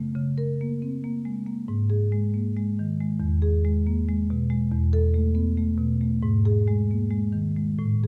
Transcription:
Already playing: F#2 A3
0.15 C#3
0.38 A#4
0.61 A#3
0.82 C4
1.04 A#3
1.25 G#3
1.47 A#3
1.68 G#2
1.90 G#4
2.12 G#3
2.34 A#3
2.57 G#3
2.79 D#3
3.01 G#3
3.20 E2
3.42 G#4
3.65 G#3
3.87 A#3
4.08 G#3
4.30 B2
4.50 G#3
4.71 E2
4.93 A4
5.14 A3
5.35 B3
5.57 A3
5.78 B2
6.01 A3
6.23 G#2
6.45 G#4
6.68 G#3
6.91 A#3
7.11 G#3
7.33 D#3
7.56 G#3
7.79 A2
8.04 G#4

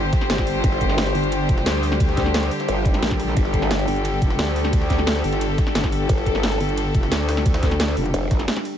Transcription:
Already playing: G1 D3 G3 D4 G4 C5 G5
0.13 kick, snare, closed hi-hat, ride
0.21 snare
0.30 G1, snare, closed hi-hat, ride
0.38 kick, snare, closed hi-hat
0.47 open hi-hat, ride
0.64 G1, kick, closed hi-hat, ride
0.72 snare
0.81 kick, closed hi-hat, ride
0.89 snare
0.98 snare, closed hi-hat, ride
1.07 snare, closed hi-hat
1.15 G1, open hi-hat, ride
1.24 closed hi-hat
1.32 closed hi-hat, ride
1.49 F1, kick, closed hi-hat, ride
1.58 snare
1.66 D2, snare, closed hi-hat, open hi-hat, ride
1.83 open hi-hat, ride
1.92 snare
2.00 kick, closed hi-hat, ride
2.09 snare
2.17 kick, snare, closed hi-hat, ride
2.26 snare
2.34 snare, closed hi-hat, ride
2.43 snare, closed hi-hat
2.51 open hi-hat, ride
2.60 snare, closed hi-hat
2.68 G1, closed hi-hat, ride
2.85 kick, closed hi-hat, ride
2.94 snare, ride
3.03 A#1, snare, closed hi-hat, ride
3.11 kick, snare, closed hi-hat, ride
3.20 open hi-hat, ride
3.28 snare
3.37 G1 A4, kick, closed hi-hat, ride
3.45 snare
3.54 kick, closed hi-hat, ride
3.62 snare
3.71 snare, closed hi-hat, ride
3.79 snare, closed hi-hat
3.88 G1, open hi-hat, ride
3.96 closed hi-hat
4.05 closed hi-hat, ride
4.22 F1, kick, closed hi-hat, ride
4.30 snare
4.39 D2, snare, closed hi-hat, open hi-hat, ride
4.56 open hi-hat, ride
4.64 snare
4.73 kick, closed hi-hat, ride
4.82 snare
4.90 kick, snare, closed hi-hat, ride
4.99 snare
5.07 snare, closed hi-hat, ride
5.16 snare, closed hi-hat
5.24 G1, open hi-hat, ride
5.33 snare, closed hi-hat
5.41 closed hi-hat, ride
5.58 kick, snare, closed hi-hat, ride
5.67 snare
5.75 G1, snare, closed hi-hat, ride
5.84 kick, snare, closed hi-hat
5.92 open hi-hat, ride
6.09 G1, kick, closed hi-hat, ride
6.18 snare
6.26 kick, closed hi-hat, ride
6.35 snare
6.43 snare, closed hi-hat, ride
6.52 snare, closed hi-hat
6.60 G1, open hi-hat, ride
6.69 closed hi-hat
6.78 closed hi-hat, ride
6.95 F1, kick, closed hi-hat, ride
7.03 snare
7.12 D2, snare, closed hi-hat, open hi-hat, ride
7.29 snare, open hi-hat, ride
7.37 snare
7.46 kick, closed hi-hat, ride
7.54 snare, ride
7.63 kick, snare, closed hi-hat
7.71 snare, ride
7.80 snare, closed hi-hat, ride
7.88 snare, closed hi-hat
7.97 F1, open hi-hat, ride
8.05 closed hi-hat
8.14 F1, closed hi-hat, ride
8.31 G1, kick, snare, closed hi-hat, ride
8.39 snare, closed hi-hat
8.48 snare, closed hi-hat, ride
8.57 snare, closed hi-hat
8.65 open hi-hat, ride

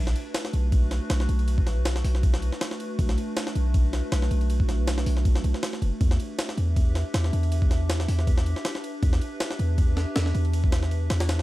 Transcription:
Already playing: B1
0.07 snare
0.16 ride
0.34 snare, ride
0.45 snare
0.53 B1, ride
0.72 kick, ride
0.91 snare, ride
1.10 B1, snare, ride
1.20 snare
1.29 B1, ride
1.39 ride
1.48 ride
1.58 kick
1.67 snare, ride
1.85 snare, ride
1.96 snare
2.04 B1, open hi-hat
2.15 snare
2.23 kick, ride
2.34 snare
2.42 ride
2.52 snare
2.61 snare, ride
2.71 snare
2.80 ride
2.99 B1, kick, ride
3.09 snare
3.18 ride
3.37 snare, ride
3.47 snare
3.55 B1, ride
3.74 kick, ride
3.93 snare, ride
4.12 B1, snare, ride
4.22 snare
4.31 B1, ride
4.41 ride
4.50 ride
4.60 kick
4.69 snare, ride
4.88 snare, ride
4.98 snare
5.06 B1, open hi-hat
5.17 snare
5.25 kick, ride
5.35 snare
5.44 B1, ride
5.54 snare
5.63 snare, ride
5.73 snare
5.82 F#1, ride
6.01 E2, kick, ride
6.11 snare
6.20 ride
6.39 snare, ride
6.49 snare
6.58 E2, ride
6.76 kick, ride
6.95 snare, ride
7.14 E2, snare, ride
7.24 snare
7.33 E2, ride
7.43 ride
7.52 ride
7.62 kick
7.71 snare, ride
7.90 snare, ride
8.00 snare
8.08 E2, open hi-hat
8.19 snare
8.27 kick, ride
8.38 snare
8.46 ride
8.56 snare
8.65 snare, ride
8.75 snare
8.84 ride
9.03 E2, kick, ride
9.13 snare
9.21 ride
9.40 snare, ride
9.51 snare
9.59 E2, ride
9.78 kick, ride
9.97 snare, ride
10.16 E2, snare, ride
10.26 snare
10.35 E2, ride
10.45 ride
10.53 ride
10.64 kick
10.72 snare, ride
10.83 snare
10.91 ride
11.10 E2, snare, ride
11.20 snare, ride
11.29 snare, ride
11.39 snare

